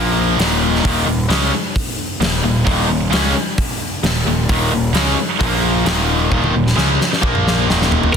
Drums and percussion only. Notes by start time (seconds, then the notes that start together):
0.39 snare, open hi-hat
0.76 snare
0.85 kick, open hi-hat
1.30 snare, open hi-hat
1.76 kick, open hi-hat
2.22 snare, open hi-hat
2.67 kick, open hi-hat
3.13 snare, open hi-hat
3.58 kick, open hi-hat
4.04 snare, open hi-hat
4.49 kick, open hi-hat
4.95 snare, open hi-hat
5.41 kick, open hi-hat
5.86 snare, open hi-hat
6.32 kick
6.44 high tom
6.67 snare
6.78 snare
7.01 snare
7.13 snare
7.23 kick
7.35 mid tom
7.47 snare
7.70 snare
7.82 snare
7.92 floor tom
8.03 floor tom